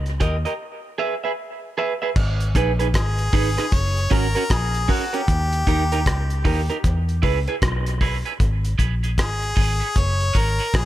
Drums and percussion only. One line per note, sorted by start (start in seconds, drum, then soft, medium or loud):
0.06 closed hi-hat soft
0.20 kick loud
0.20 closed hi-hat medium
0.45 closed hi-hat soft
2.16 kick loud
2.16 crash medium
2.40 closed hi-hat medium
2.55 kick medium
2.55 closed hi-hat medium
2.80 closed hi-hat medium
2.94 kick medium
2.94 cross-stick loud
2.94 closed hi-hat medium
3.18 closed hi-hat soft
3.33 kick loud
3.33 open hi-hat medium
3.58 cross-stick medium
3.58 closed hi-hat soft
3.72 kick loud
3.72 closed hi-hat medium
3.97 closed hi-hat soft
4.11 kick medium
4.11 closed hi-hat medium
4.35 closed hi-hat soft
4.50 kick loud
4.50 cross-stick loud
4.50 closed hi-hat medium
4.74 closed hi-hat medium
4.89 kick medium
4.89 open hi-hat medium
5.14 closed hi-hat medium
5.28 kick loud
5.28 closed hi-hat medium
5.52 closed hi-hat medium
5.67 kick medium
5.67 closed hi-hat medium
5.92 closed hi-hat medium
6.06 kick loud
6.06 cross-stick loud
6.06 closed hi-hat medium
6.30 closed hi-hat soft
6.45 kick loud
6.45 open hi-hat medium
6.70 closed hi-hat medium
6.84 kick loud
6.84 closed hi-hat medium
7.09 closed hi-hat soft
7.23 kick medium
7.23 open hi-hat soft
7.47 closed hi-hat soft
7.62 kick loud
7.62 cross-stick loud
7.62 closed hi-hat medium
7.86 closed hi-hat medium
8.01 kick medium
8.01 open hi-hat medium
8.26 closed hi-hat medium
8.40 kick loud
8.40 closed hi-hat medium
8.65 closed hi-hat medium
8.79 kick medium
8.79 closed hi-hat medium
9.04 closed hi-hat medium
9.18 kick medium
9.18 cross-stick loud
9.18 closed hi-hat medium
9.42 closed hi-hat soft
9.57 kick loud
9.57 open hi-hat medium
9.82 closed hi-hat soft
9.96 kick loud
9.96 closed hi-hat medium
10.20 closed hi-hat soft
10.35 kick medium
10.35 closed hi-hat medium
10.59 closed hi-hat soft
10.74 kick loud
10.74 cross-stick loud
10.74 closed hi-hat medium